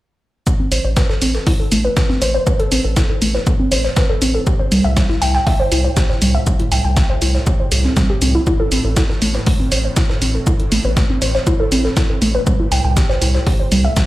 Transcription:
0.47 synth drone A2, synth arpeggio sound A3, kick, shaker
0.60 synth arpeggio sound C4
0.72 analog synth bass A1, synth arpeggio sound C5, open hi-hat, shaker
0.85 analog synth bass A1, synth arpeggio sound C5
0.97 synth arpeggio sound B4, kick, snare, shaker
1.09 synth arpeggio sound A4, snare
1.22 analog synth bass A1, synth arpeggio sound C4, open hi-hat, shaker
1.35 synth arpeggio sound A4, snare
1.47 synth arpeggio sound E4, kick, open hi-hat
1.60 synth arpeggio sound A4
1.72 analog synth bass A1, synth arpeggio sound A3, open hi-hat, shaker
1.85 synth arpeggio sound B4
1.97 synth arpeggio sound A3, kick, snare, shaker
2.09 synth arpeggio sound C4, snare
2.22 analog synth bass A1, synth arpeggio sound C5, open hi-hat, shaker
2.34 synth arpeggio sound C5
2.47 synth arpeggio sound B4, kick, shaker
2.59 synth arpeggio sound A4, closed hi-hat
2.72 analog synth bass A1, synth arpeggio sound C4, open hi-hat, shaker
2.84 analog synth bass A1, synth arpeggio sound A4
2.96 synth arpeggio sound E4, kick, snare, shaker
3.10 synth arpeggio sound A4
3.22 analog synth bass A1, synth arpeggio sound A3, open hi-hat, shaker
3.35 synth arpeggio sound B4, snare
3.47 synth arpeggio sound A3, kick, shaker
3.59 synth arpeggio sound C4
3.71 analog synth bass A1, synth arpeggio sound C5, open hi-hat, shaker
3.84 synth arpeggio sound C5, snare
3.97 synth arpeggio sound B4, kick, snare, shaker
4.10 synth arpeggio sound A4
4.22 analog synth bass A1, synth arpeggio sound C4, open hi-hat, shaker
4.34 synth arpeggio sound A4
4.47 synth arpeggio sound G4, kick, shaker
4.59 synth arpeggio sound C5
4.72 analog synth bass C2, synth arpeggio sound G3, open hi-hat, shaker
4.84 analog synth bass C2, synth arpeggio sound E5
4.97 synth arpeggio sound G3, kick, snare, shaker
5.09 synth arpeggio sound E4, snare
5.22 analog synth bass C2, synth arpeggio sound G5, open hi-hat, shaker
5.34 synth arpeggio sound G5, snare
5.47 synth arpeggio sound E5, kick, open hi-hat
5.60 synth arpeggio sound C5
5.72 analog synth bass C2, synth arpeggio sound E4, open hi-hat, shaker
5.84 synth arpeggio sound C5
5.97 synth arpeggio sound G4, kick, snare, shaker
6.10 synth arpeggio sound C5, snare
6.22 analog synth bass C2, synth arpeggio sound G3, open hi-hat, shaker
6.35 synth arpeggio sound E5
6.47 synth arpeggio sound G3, kick, shaker
6.60 synth arpeggio sound E4, closed hi-hat
6.72 analog synth bass C2, synth arpeggio sound G5, open hi-hat, shaker
6.85 analog synth bass C2, synth arpeggio sound G5
6.97 synth arpeggio sound E5, kick, snare, shaker
7.10 synth arpeggio sound C5
7.22 analog synth bass C2, synth arpeggio sound E4, open hi-hat, shaker
7.34 synth arpeggio sound C5, snare
7.47 synth arpeggio sound G4, kick, shaker
7.60 synth arpeggio sound C5
7.72 analog synth bass C2, synth arpeggio sound G4, open hi-hat, shaker
7.84 synth arpeggio sound C4, snare
7.97 synth arpeggio sound G3, kick, snare, shaker
8.10 synth arpeggio sound G4
8.22 analog synth bass C2, synth arpeggio sound C4, open hi-hat, shaker
8.35 synth arpeggio sound E4
8.47 synth arpeggio sound E4, kick, shaker
8.60 synth arpeggio sound A4
8.71 analog synth bass A1, synth arpeggio sound C4, open hi-hat, shaker
8.85 analog synth bass A1, synth arpeggio sound A4
8.97 synth arpeggio sound E4, kick, snare, shaker
9.09 synth arpeggio sound A4, snare
9.22 analog synth bass A1, synth arpeggio sound A3, open hi-hat, shaker
9.34 synth arpeggio sound B4, snare
9.46 synth arpeggio sound A3, kick, open hi-hat
9.60 synth arpeggio sound C4
9.72 analog synth bass A1, synth arpeggio sound C5, open hi-hat, shaker
9.85 synth arpeggio sound C5
9.96 synth arpeggio sound E4, kick, snare, shaker
10.10 synth arpeggio sound A4, snare
10.22 analog synth bass A1, synth arpeggio sound C4, open hi-hat, shaker
10.35 synth arpeggio sound A4
10.47 synth arpeggio sound E4, kick, shaker
10.60 synth arpeggio sound A4, closed hi-hat
10.72 analog synth bass A1, synth arpeggio sound A3, open hi-hat, shaker
10.85 analog synth bass A1, synth arpeggio sound B4
10.97 synth arpeggio sound A3, kick, snare, shaker
11.10 synth arpeggio sound C4
11.22 analog synth bass A1, synth arpeggio sound C5, open hi-hat, shaker
11.35 synth arpeggio sound C5, snare
11.47 synth arpeggio sound E4, kick, shaker
11.60 synth arpeggio sound A4
11.72 analog synth bass A1, synth arpeggio sound C4, open hi-hat, shaker
11.85 synth arpeggio sound A4, snare
11.97 synth arpeggio sound E4, kick, snare, shaker
12.10 synth arpeggio sound A4
12.22 analog synth bass A1, synth arpeggio sound A3, open hi-hat, shaker
12.35 synth arpeggio sound B4
12.47 synth arpeggio sound G3, kick, shaker
12.60 synth arpeggio sound E4
12.72 analog synth bass C2, synth arpeggio sound G5, open hi-hat, shaker
12.85 analog synth bass C2, synth arpeggio sound G5
12.97 synth arpeggio sound G4, kick, snare, shaker
13.09 synth arpeggio sound C5, snare
13.22 analog synth bass C2, synth arpeggio sound E4, open hi-hat, shaker
13.34 synth arpeggio sound C5, snare
13.47 synth arpeggio sound G4, kick, open hi-hat
13.60 synth arpeggio sound C5
13.72 analog synth bass C2, synth arpeggio sound G3, open hi-hat, shaker
13.85 synth arpeggio sound E5
13.97 synth arpeggio sound G3, kick, snare, shaker

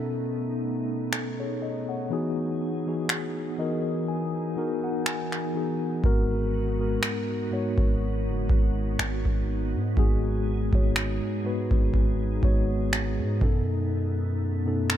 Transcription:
Already playing: tine electric piano B2 B3 C#4 D#4 A4, ambient pad A3 B3 D#4
1.13 tine electric piano D#4 A4, finger snap
1.40 tine electric piano G#4 C#5
1.62 tine electric piano A4 D#5
1.89 tine electric piano C#5 F#5
2.10 tine electric piano E3 B3 D#4 F#4 G#4, ambient pad E3 G#4
2.86 tine electric piano E3 B3 D#4 F#4 G#4
3.09 finger snap
3.58 tine electric piano E3 B3 D#4 F#4 A#4 D#5
4.06 ambient pad D#4, tine electric piano G#5
4.56 tine electric piano E3 B3 D#4 F#4 A#4
4.84 tine electric piano F#5
5.06 tine electric piano G#5, finger snap
5.32 finger snap
5.54 tine electric piano E3 B3 D#4 F#4 G#4
6.03 808-style bass G#1, tine electric piano G#2 G#3 B3 F#4 A#4, ambient pad G#3 B3 D#4 F#4, kick
6.78 tine electric piano G#2 G#3 B3 F#4 A#4
7.03 finger snap
7.51 tine electric piano G#2 G#3 B3 F#4 C#5
7.78 808-style bass G#1, kick
8.27 808-style bass F#1
8.50 808-style bass G#1, kick
8.99 808-style bass G#1, finger snap
9.25 808-style bass G#1, kick
9.74 808-style bass G#2
9.96 808-style bass G#1, tine electric piano G#2 G#3 B3 F#4 G#4, ambient pad G#4, kick
10.72 808-style bass G#1, tine electric piano G#2 G#3 B3 F#4 C#5, kick
10.96 finger snap
11.44 tine electric piano G#2 G#3 B3 F#4 B4
11.71 808-style bass G#1, kick
11.94 kick
12.42 808-style bass G#1, tine electric piano G#2 G#3 B3 F#4 C#5, kick
12.93 finger snap
13.19 808-style bass G#2
13.40 808-style bass F#2, tine electric piano B2 B3 C#4 D#4 A4, ambient pad A3 B3, kick
14.65 tine electric piano B2 B3 C#4 D#4 A4
14.90 finger snap

